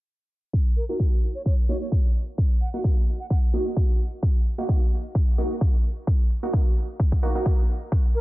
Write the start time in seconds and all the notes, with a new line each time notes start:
0.53 kick
0.76 A#4, open hi-hat
0.89 A#3 D#4 F#4 A#4
1.00 kick
1.23 open hi-hat
1.35 C#5
1.46 C#5, kick
1.69 A#3 D#4 F#4 C#5, open hi-hat
1.81 C#5
1.92 kick
2.15 open hi-hat
2.38 kick
2.61 F#5, open hi-hat
2.74 A#3 D#4 F#4 F#5
2.84 kick
3.07 open hi-hat
3.20 F#5
3.30 F#5, kick
3.53 A#3 D#4 F#4, open hi-hat
3.77 kick
4.00 open hi-hat
4.23 kick
4.46 open hi-hat
4.58 A#3 D#4 F#4
4.69 kick
4.92 open hi-hat
5.15 kick
5.38 A#3 D#4 F#4, open hi-hat
5.61 kick
5.84 open hi-hat
6.07 kick
6.30 open hi-hat
6.43 A#3 D#4 F#4
6.53 kick
6.76 open hi-hat
7.00 kick
7.12 kick
7.23 A#3 D#4 F#4, open hi-hat
7.35 A#3 D#4 F#4
7.46 kick
7.69 open hi-hat
7.92 kick
8.15 A#4, open hi-hat